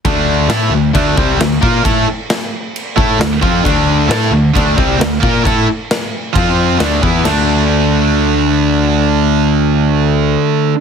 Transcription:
<<
  \new Staff \with { instrumentName = "Distorted electric guitar" } { \time 4/4 \key d \minor \tempo 4 = 133 <d a d'>4 <a e' a'>8 <d a>8 <d a d'>8 <c g c'>8 <d a>8 <bes f' bes'>8 | <a e' a'>8 r2 <a e' a'>8 <d a>8 <f c' f'>8 | <d a d'>4 <a e' a'>8 <d a>8 <d a d'>8 <c g c'>8 <d a>8 <bes f' bes'>8 | <a e' a'>8 r4. <f c' f'>4 <d a d'>8 <e b e'>8 |
<d a d'>1~ | <d a d'>1 | }
  \new Staff \with { instrumentName = "Overdriven electric guitar" } { \time 4/4 \key d \minor <d a d'>4 <a e' a'>8 <d a>8 <d a d'>8 <c g c'>8 <d a>8 <bes f' bes'>8 | <a e' a'>8 r2 <a e' a'>8 <d a>8 <f c' f'>8 | <d a d'>4 <a e' a'>8 <d a>8 <d a d'>8 <c g c'>8 <d a>8 <bes f' bes'>8 | <a e' a'>8 r4. <f c' f'>4 <d a d'>8 <e b e'>8 |
<d a d'>1~ | <d a d'>1 | }
  \new Staff \with { instrumentName = "Picked electric bass" } { \clef bass \time 4/4 \key d \minor d,4 a,8 d,8 d,8 c,8 d,8 bes,8 | a,8 r2 a,8 d,8 f,8 | d,4 a,8 d,8 d,8 c,8 d,8 bes,8 | a,8 r4. f,4 d,8 e,8 |
d,1~ | d,1 | }
  \new DrumStaff \with { instrumentName = "Drums" } \drummode { \time 4/4 <cymc bd>4 <cymc sn>4 <cymc bd>8 bd8 <cymc sn>8 bd8 | <cymc bd>4 <cymc sn>4 cymc8 bd8 <cymc sn>8 bd8 | <cymc bd>4 <cymc sn>4 <cymc bd>8 bd8 <cymc sn>8 bd8 | <cymc bd>4 <cymc sn>4 <cymc bd>4 <cymc sn>8 bd8 |
<cymc sn>4 r4 r4 r4 | r4 r4 r4 r4 | }
>>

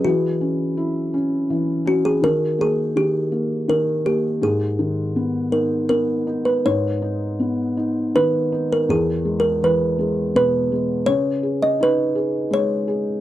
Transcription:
<<
  \new Staff \with { instrumentName = "Kalimba" } { \time 3/4 \key gis \minor \tempo 4 = 82 fis'2~ fis'8 fis'16 gis'16 | ais'8 gis'8 g'4 ais'8 g'8 | gis'4. ais'8 ais'8. b'16 | cis''2 b'8. ais'16 |
\tuplet 3/2 { gis'4 ais'8 } b'4 b'4 | cis''8. dis''16 b'4 cis''4 | }
  \new Staff \with { instrumentName = "Felt piano" } { \time 3/4 \key gis \minor e8 cis'8 e'8 cis'8 e8 cis'8 | dis8 ais8 dis8 ais8 dis8 ais8 | gis,8 dis8 b8 dis'8 b8 dis'8 | gis,8 dis'8 b8 dis'8 dis8 dis'8 |
e,8 gis8 e8 gis8 b,8 gis8 | cis8 gis'8 dis'8 gis'8 gis8 gis'8 | }
>>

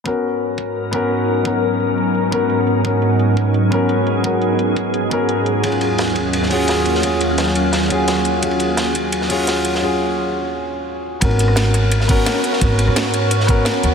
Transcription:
<<
  \new Staff \with { instrumentName = "Grand piano" } { \time 4/4 \key gis \minor \tempo 4 = 172 <b cis' fis' ais'>2~ <b cis' fis' ais'>8 <b cis' fis' ais'>4. | <b cis' fis' ais'>2~ <b cis' fis' ais'>8 <b cis' fis' ais'>4. | <b cis' fis' ais'>2~ <b cis' fis' ais'>8 <b cis' fis' ais'>4. | <b cis' fis' ais'>2~ <b cis' fis' ais'>8 <b cis' fis' ais'>4. |
<cis' eis' fis' gis'>2~ <cis' eis' fis' gis'>8 <cis' eis' fis' gis'>4. | <cis' eis' fis' gis'>2~ <cis' eis' fis' gis'>8 <cis' eis' fis' gis'>4. | <cis' eis' fis' gis'>2~ <cis' eis' fis' gis'>8 <cis' eis' fis' gis'>4. | <cis' eis' fis' gis'>2~ <cis' eis' fis' gis'>8 r4. |
<b cis' fis' ais'>2~ <b cis' fis' ais'>8 <b cis' fis' ais'>4. | <b cis' fis' ais'>2~ <b cis' fis' ais'>8 <b cis' fis' ais'>4. | }
  \new Staff \with { instrumentName = "Ambient pad" } { \time 4/4 \key gis \minor << { <gis, fis b cis' dis'>1~ | <gis, fis b cis' dis'>1~ | <gis, fis b cis' dis'>1~ | <gis, fis b cis' dis'>1 |
<dis, fis ais cis' eis''>1~ | <dis, fis ais cis' eis''>1~ | <dis, fis ais cis' eis''>1 | r1 |
<b ais' cis''>1~ | <b ais' cis''>1 | } \\ { ais'1~ | ais'1 | gis'1~ | gis'1~ |
gis'1~ | gis'1~ | gis'1 | r1 |
r1 | r1 | } >> }
  \new Staff \with { instrumentName = "Upright bass" } { \clef bass \time 4/4 \key gis \minor r1 | r1 | r1 | r1 |
r1 | r1 | r1 | r1 |
gis,,2. r4 | gis,,8. gis,2~ gis,16 r8 dis,8 | }
  \new DrumStaff \with { instrumentName = "Drums" } \drummode { \time 4/4 bd4 hh8 <hh bd>8 hh8 bd8 hh8 hh8 | bd8 hh8 hh8 hh8 hh8 <hh bd>8 hh8 hh8 | <hh bd>8 hh8 hh8 <hh bd>8 hh8 <hh bd>8 hh8 hh8 | <hh bd>8 hh8 hh8 <hh bd>8 hh8 <hh bd>8 hh8 hh8 |
<hh bd cymr>16 cymr16 <hh cymr>8 <hh cymr sn>16 cymr16 <hh bd cymr>8 <hh cymr>16 sn16 <hh hho bd>8 <hh cymr sn>16 cymr16 <hh cymr>16 sn16 | <hh bd cymr>8 <hh cymr>8 <hh cymr sn>16 sn16 <hh cymr>8 <hh cymr sn>16 sn16 <hh bd cymr>8 <hh cymr sn>8 <hh cymr>8 | <hh bd cymr>16 cymr16 <hh cymr>8 <hh cymr sn>16 cymr16 <hh bd cymr>8 <hh cymr>16 sn16 <hh hho bd>8 <hh cymr sn>16 cymr16 <hh cymr>16 sn16 | r4 r4 r4 r4 |
<hh bd cymr>16 cymr16 <hh cymr>16 ss16 <hh cymr sn>16 cymr16 <hh cymr ss>8 <hh cymr>16 sn16 <hh hho bd>8 <hh cymr sn>16 <cymr sn>16 <hh cymr>16 <ss sn>16 | <hh bd cymr>8 <hh cymr>16 ss16 <hh cymr sn>16 sn16 <hh cymr>8 <hh cymr>16 sn16 <hh bd cymr>8 <hh cymr sn>8 <hh cymr>8 | }
>>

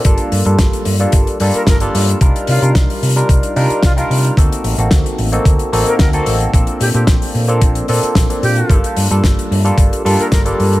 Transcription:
<<
  \new Staff \with { instrumentName = "Flute" } { \time 4/4 \key g \minor \tempo 4 = 111 r2 r8. bes'16 bes'16 r8. | r8 f'8 r2 f'16 f'16 r8 | r2 r8. bes'16 bes'16 r8. | r8 g'16 g'16 r2 r8 g'8 |
r2 r8. bes'16 bes'16 r8. | }
  \new Staff \with { instrumentName = "Tine electric piano" } { \time 4/4 \key g \minor <g bes d' f' a'>8. <g bes d' f' a'>4 <g bes d' f' a'>8. <g bes d' f' a'>8. <g bes d' f' a'>8. | <g d' ees' f' bes'>8. <g d' ees' f' bes'>4 <g d' ees' f' bes'>8. <g d' ees' f' bes'>8. <g d' ees' f' bes'>8. | <bes c' ees' fis' a'>8. <bes c' ees' fis' a'>4 <bes c' ees' fis' a'>8. <bes c' ees' fis' a'>8. <bes c' ees' fis' a'>8. | <bes c' d' f' a'>8. <bes c' d' f' a'>4 <bes c' d' f' a'>8. <bes c' d' f' a'>8. <bes c' d' f' a'>8. |
<g bes d' f' a'>8. <g bes d' f' a'>4 <g bes d' f' a'>8. <g bes d' f' a'>8. <g bes d' f' a'>8. | }
  \new Staff \with { instrumentName = "Fingered electric bass" } { \clef bass \time 4/4 \key g \minor g,,16 r16 g,16 g,16 g,,16 r16 g,16 r16 g,,16 r16 g,16 r16 g,,16 r16 g,16 r16 | c,16 r16 c16 c16 c,16 r16 c16 r16 c,16 r16 c16 r16 c,16 r16 c16 r16 | d,16 r16 a,,16 a,,16 d,16 r16 a,,16 r16 d,16 r16 a,,16 r16 d,16 r16 a,,16 r16 | bes,,16 r16 bes,16 bes,16 bes,,16 r16 bes,8 bes,,16 r16 bes,16 r16 bes,,16 r16 bes,16 r16 |
g,,16 r16 g,16 g,16 g,,16 r16 g,16 r16 g,,16 r16 g,16 r16 g,,16 r16 g,16 r16 | }
  \new DrumStaff \with { instrumentName = "Drums" } \drummode { \time 4/4 <hh bd>16 hh16 hho16 hh16 <hh bd sn>16 hh16 hho16 hh16 <hh bd>16 hh16 hho16 hh16 <hh bd sn>16 hh16 hho16 hh16 | <hh bd>16 hh16 hho16 hh16 <hh bd sn>16 hho16 hho16 hh16 <hh bd>16 hh16 hho16 hh16 <hh bd sn>16 hh16 hho16 hh16 | <hh bd>16 hh16 hho16 hh16 <hh bd sn>16 hh16 hho16 hh16 <hh bd>16 hh16 hho16 hh16 <hh bd sn>16 hh16 hho16 hh16 | <hh bd>16 hh16 hho16 hh16 <hh bd sn>16 hho16 hho16 hh16 <hh bd>16 hh16 hho16 hh16 <hh bd sn>16 hh16 hho16 hh16 |
<hh bd>16 hh16 hho16 hh16 <hh bd sn>16 hh16 hho16 hh16 <hh bd>16 hh16 hho16 hh16 <hh bd sn>16 hh16 hho16 hh16 | }
>>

